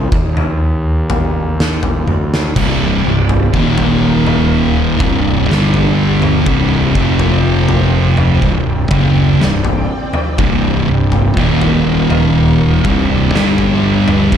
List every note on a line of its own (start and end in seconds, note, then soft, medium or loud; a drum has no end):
0.12 2.03 D#2 medium
0.12 kick loud
0.37 mid tom medium
1.10 floor tom medium
1.60 snare medium
1.83 floor tom medium
2.07 2.52 D2 medium
2.07 high tom medium
2.34 snare medium
2.56 3.02 C1 medium
2.56 3.04 C2 medium
2.56 3.04 G2 medium
2.56 3.04 C3 medium
2.56 3.54 C4 medium
2.56 3.53 G4 medium
2.56 3.53 D5 medium
2.56 kick loud
2.56 floor tom medium
2.56 crash medium
3.05 3.51 C1 medium
3.05 3.45 C2 medium
3.05 3.45 G2 medium
3.29 floor tom medium
3.53 4.96 D#1 medium
3.53 4.99 D#2 loud
3.53 4.99 A#2 loud
3.53 5.00 D#3 loud
3.53 4.99 D#4 medium
3.53 5.00 A#4 medium
3.53 5.00 F5 medium
3.53 kick medium
3.78 floor tom medium
4.27 mid tom medium
4.99 5.46 C1 medium
4.99 5.48 C2 medium
4.99 5.48 G2 medium
4.99 5.48 C3 loud
4.99 5.49 C4 medium
4.99 6.94 G4 medium
4.99 5.49 D5 medium
4.99 kick loud
4.99 floor tom medium
4.99 mid tom medium
5.49 6.43 G1 loud
5.49 6.46 G2 loud
5.49 6.46 D3 loud
5.49 6.46 G3 medium
5.49 6.46 G3 loud
5.49 6.46 D4 medium
5.49 snare medium
5.74 floor tom medium
6.22 mid tom medium
6.46 6.92 C1 medium
6.46 6.95 C2 medium
6.46 6.95 G2 medium
6.46 6.96 C3 loud
6.46 6.95 C4 medium
6.46 6.95 D5 medium
6.46 kick loud
6.46 floor tom medium
6.95 8.39 F1 medium
6.95 8.42 F2 medium
6.95 8.42 C3 loud
6.95 8.42 F3 medium
6.95 8.41 F4 medium
6.95 8.42 C5 medium
6.95 8.42 G5 medium
6.95 kick loud
7.19 floor tom medium
7.69 floor tom medium
8.17 mid tom medium
8.42 8.88 C1 medium
8.42 8.82 C2 medium
8.42 8.83 G2 medium
8.42 11.34 C4 medium
8.42 11.35 D5 medium
8.42 11.34 G5 medium
8.42 kick medium
8.91 9.37 F#1 medium
8.91 9.40 F#2 medium
8.91 9.40 C#3 medium
8.91 9.40 F#3 loud
8.91 kick loud
8.91 floor tom medium
8.91 mid tom medium
9.41 9.87 C1 medium
9.41 9.81 C2 medium
9.41 9.81 G2 medium
9.41 snare medium
9.64 floor tom medium
10.13 mid tom medium
10.38 10.85 C1 loud
10.38 10.87 C2 medium
10.38 10.87 G2 loud
10.38 10.87 C3 loud
10.38 kick loud
10.38 floor tom medium
10.88 11.34 C1 medium
10.88 11.28 C2 medium
10.88 11.28 G2 medium
11.12 floor tom medium
11.37 12.80 D#1 loud
11.37 12.83 D#2 loud
11.37 12.84 A#2 loud
11.37 12.84 D#3 loud
11.37 12.83 D#4 medium
11.37 12.83 A#4 medium
11.37 12.83 F5 medium
11.37 kick loud
11.61 floor tom medium
12.10 mid tom medium
12.85 13.30 C1 medium
12.85 13.32 C2 medium
12.85 13.32 G2 medium
12.85 13.33 C3 loud
12.85 13.33 C4 medium
12.85 14.31 G4 medium
12.85 13.33 D5 medium
12.85 kick loud
12.85 floor tom medium
12.85 mid tom medium
13.33 14.28 G1 loud
13.33 14.30 G2 loud
13.33 14.31 D3 loud
13.33 14.37 G3 medium
13.33 14.31 G3 loud
13.33 14.37 D4 medium
13.33 snare medium
13.58 floor tom medium
14.08 mid tom medium
14.32 14.37 C1 medium
14.32 14.37 C2 medium
14.32 14.37 G2 medium
14.32 14.37 C3 medium
14.32 14.37 C3 loud
14.32 kick loud
14.32 floor tom medium